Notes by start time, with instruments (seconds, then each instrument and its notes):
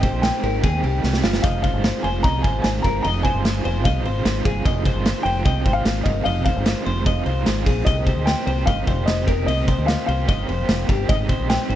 Already playing: upright piano G5
0.02 overdriven electric guitar C4 D#4 G4, clean electric guitar C5, kick, ride
0.13 fingered electric bass A#1
0.22 overdriven electric guitar G#3 C4 D#4 G4, upright piano G5, snare, ride
0.43 fingered electric bass G#1, overdriven electric guitar C4 D#4 G4, clean electric guitar A#4, ride
0.63 fingered electric bass D#2, overdriven electric guitar G#3 C4 D#4 G4, clean electric guitar G#4, kick, ride
0.83 fingered electric bass C2, overdriven electric guitar C4 D#4 G4, clean electric guitar G4, ride
1.03 fingered electric bass C2, overdriven electric guitar G#3 C4 D#4 G4, snare
1.13 snare
1.23 fingered electric bass G1, overdriven electric guitar C4 D#4 G4, clean electric guitar F4, snare
1.33 snare
1.42 fingered electric bass F1, overdriven electric guitar F2 C3 D#3 G#3 C4 F4, clean electric guitar D#5, upright piano F5, kick, hi-hat pedal, ride
1.62 overdriven electric guitar G#3 C4 F4, clean electric guitar C5, upright piano F5, kick, ride
1.66 overdriven electric guitar D#3
1.73 fingered electric bass G1
1.83 overdriven electric guitar D#3 G#3 C4 F4, snare, ride
2.03 fingered electric bass F1, overdriven electric guitar D#3 G#3 C4 F4, clean electric guitar C5, upright piano G#5, ride
2.23 fingered electric bass C2, overdriven electric guitar F2 C3 D#3 G#3 C4 F4, clean electric guitar D#5, upright piano A#5, kick, ride
2.42 fingered electric bass G#1, overdriven electric guitar G#3 C4 F4, clean electric guitar C5, upright piano G#5, kick, ride
2.47 overdriven electric guitar D#3
2.62 fingered electric bass G#1, overdriven electric guitar D#3 G#3, upright piano G#5, snare, ride
2.66 overdriven electric guitar C4 F4
2.82 fingered electric bass G1, overdriven electric guitar G#3 C4 F4, clean electric guitar A#4, upright piano A#5, kick, ride
2.87 overdriven electric guitar D#3
3.03 fingered electric bass F1, overdriven electric guitar F2 C3 D#3 G#3 C4, clean electric guitar D#5, upright piano A#5, ride
3.07 overdriven electric guitar F4
3.23 overdriven electric guitar G#3 C4 F4, clean electric guitar C5, upright piano G#5, kick, ride
3.28 overdriven electric guitar D#3
3.35 fingered electric bass G1
3.44 overdriven electric guitar D#3 G#3 C4 F4, snare, ride
3.64 fingered electric bass F1, overdriven electric guitar D#3 G#3 C4 F4, clean electric guitar C5, ride
3.84 fingered electric bass C2, overdriven electric guitar F2 C3 D#3 G#3 C4 F4, clean electric guitar D#5, upright piano F5, kick, ride
4.05 fingered electric bass G#1, overdriven electric guitar D#3 G#3 C4 F4, clean electric guitar C5, ride
4.25 fingered electric bass G#1, overdriven electric guitar D#3 G#3 C4 F4, snare, ride
4.45 fingered electric bass G1, overdriven electric guitar D#3 G#3 C4 F4, clean electric guitar G#4, kick, ride
4.65 fingered electric bass F1, overdriven electric guitar F2 C3 D#3 G#3 C4 F4, clean electric guitar D#5, kick, ride
4.85 overdriven electric guitar D#3 G#3 C4 F4, clean electric guitar C5, kick, ride
4.95 fingered electric bass G1
5.05 overdriven electric guitar D#3 G#3 C4 F4, snare, ride
5.23 fingered electric bass F1, overdriven electric guitar F4, clean electric guitar C5, upright piano G5, ride
5.27 overdriven electric guitar D#3 G#3 C4
5.45 fingered electric bass C2, overdriven electric guitar F2 C3 D#3 G#3 C4 F4, clean electric guitar D#5, kick, ride
5.65 fingered electric bass G#1, overdriven electric guitar D#3 G#3 C4 F4, clean electric guitar C5, kick, ride
5.73 upright piano F5
5.85 fingered electric bass G#1, overdriven electric guitar D#3 G#3 C4 F4, snare, ride
6.03 fingered electric bass G1, overdriven electric guitar G#3 C4 F4, clean electric guitar A#4, upright piano D#5, kick, ride
6.08 overdriven electric guitar D#3
6.24 fingered electric bass F1, overdriven electric guitar F2 C3 D#3 G#3 C4, clean electric guitar D#5, upright piano F5, ride
6.28 overdriven electric guitar F4
6.45 overdriven electric guitar D#3 G#3 C4 F4, clean electric guitar C5, upright piano F5, kick, ride
6.56 fingered electric bass G1
6.65 overdriven electric guitar D#3 G#3 C4 F4, snare, ride
6.85 fingered electric bass F1, overdriven electric guitar D#3 G#3 C4 F4, clean electric guitar C5, ride
7.05 overdriven electric guitar F2 C3 D#3 G#3 C4 F4, clean electric guitar D#5, kick, ride
7.25 fingered electric bass C2, overdriven electric guitar D#3 G#3 C4 F4, clean electric guitar C5, ride
7.46 fingered electric bass G#1, overdriven electric guitar D#3 G#3 C4 F4, snare, ride
7.66 fingered electric bass A#1, overdriven electric guitar D#3 G#3 C4 F4, clean electric guitar G#4, kick, open hi-hat, ride
7.85 fingered electric bass C2, overdriven electric guitar C3 D#3 A#3 C4 G4, upright piano D#5, clean electric guitar D#5, kick, hi-hat pedal, ride
8.06 overdriven electric guitar A#3 C4 G4, clean electric guitar C5, kick, ride
8.16 fingered electric bass D2
8.25 overdriven electric guitar D#3 A#3 C4, upright piano G5, snare, ride
8.30 overdriven electric guitar G4
8.46 fingered electric bass C2, overdriven electric guitar A#3 C4 G4, clean electric guitar C5, ride
8.66 fingered electric bass G1, overdriven electric guitar C3 D#3 A#3 C4 G4, clean electric guitar D#5, upright piano F5, kick, ride
8.87 fingered electric bass F1, overdriven electric guitar A#3 C4 G4, clean electric guitar C5, kick, ride
9.06 overdriven electric guitar D#3 A#3 C4 G4, upright piano D#5, snare, ride
9.27 overdriven electric guitar A#3 C4 G4, clean electric guitar A#4, kick, ride
9.46 fingered electric bass C2, overdriven electric guitar C3 D#3 A#3 C4 G4, upright piano D#5, clean electric guitar D#5, ride
9.67 overdriven electric guitar A#3 C4 G4, clean electric guitar C5, kick, ride
9.78 fingered electric bass D2
9.86 overdriven electric guitar D#3 A#3 C4, upright piano F5, snare, ride
9.91 overdriven electric guitar G4
10.06 fingered electric bass C2, overdriven electric guitar C4 G4, clean electric guitar C5, upright piano F5, ride
10.11 overdriven electric guitar A#3
10.28 fingered electric bass G1, overdriven electric guitar C3 D#3 A#3 C4 G4, clean electric guitar D#5, kick, ride
10.48 fingered electric bass F1, overdriven electric guitar A#3 C4 G4, clean electric guitar C5, ride
10.68 fingered electric bass F1, overdriven electric guitar D#3 A#3 C4 G4, snare, ride
10.88 fingered electric bass G1, overdriven electric guitar A#3 C4 G4, clean electric guitar G4, kick, ride
11.08 fingered electric bass G#1, overdriven electric guitar G#3 C4 D#4 G4, upright piano D#5, clean electric guitar D#5, kick, ride
11.28 overdriven electric guitar C4 D#4 G4, clean electric guitar C5, kick, ride
11.39 fingered electric bass A#1
11.48 overdriven electric guitar G#3 C4 D#4 G4, upright piano G5, snare, ride
11.69 fingered electric bass G#1, overdriven electric guitar C4 D#4 G4, clean electric guitar C5, ride